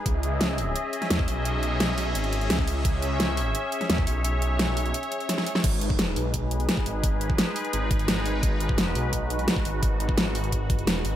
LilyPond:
<<
  \new Staff \with { instrumentName = "Analog synth pad" } { \time 4/4 \key gis \minor \tempo 4 = 172 << { <cis' e''>1~ | <cis' e''>1~ | <cis' e''>1~ | <cis' e''>1 |
<gis dis' b'>1~ | <gis dis' b'>1~ | <gis dis' b'>1~ | <gis dis' b'>1 | } \\ { <gis' dis''>1~ | <gis' dis''>1 | cis''1~ | cis''1 |
gis'1~ | gis'1 | fis'1~ | fis'1 | } >> }
  \new Staff \with { instrumentName = "Detuned saw bass" } { \clef bass \time 4/4 \key gis \minor cis,8 cis,4. r4 e,8 b,,8~ | b,,2 gis,,4 cis,8 cis,8 | cis,8 cis,4. r4 e,8 b,,8~ | b,,2 r2 |
gis,,4. b,,4. r8 gis,,8~ | gis,,4 r4 gis,,4 gis,,4 | gis,,4. b,,4. r8 gis,,8~ | gis,,4 gis,,2~ gis,,8 gis,,8 | }
  \new DrumStaff \with { instrumentName = "Drums" } \drummode { \time 4/4 <hh bd>8 hh8 <hh sn>8 hho8 hh8 hh16 <hh sn>16 <hh sn>16 bd16 hho8 | hh8 hh8 <hh sn>16 sn16 hho8 hh16 hh16 hh16 hh16 <hh sn>16 bd16 hho8 | <hh bd>8 hh8 <hh sn>8 hho8 hh8 hh16 <hh sn>16 <hh sn>16 bd16 hho8 | hh8 hh8 <hh sn>16 sn16 hho16 hh16 hh16 hh16 hh16 hh16 <hh sn>16 sn16 hho16 sn16 |
<cymc hh bd>8 hh16 bd16 <hh sn>8 hho8 <hh bd>8 hh16 hh16 <hh sn>16 bd16 hho8 | <hh bd>8 hh16 bd16 <hh sn>8 hho16 hh16 hh8 <hh bd>16 hh16 <hh sn>8 hho8 | <hh bd>8 hh16 bd16 <hh sn>8 hho8 <hh bd>8 hh16 hh16 <hh sn>16 bd16 hho8 | <hh bd>8 hh16 bd16 <hh sn>8 hho16 hh16 <hh bd>8 <hh bd>16 hh16 <hh sn>8 hho8 | }
>>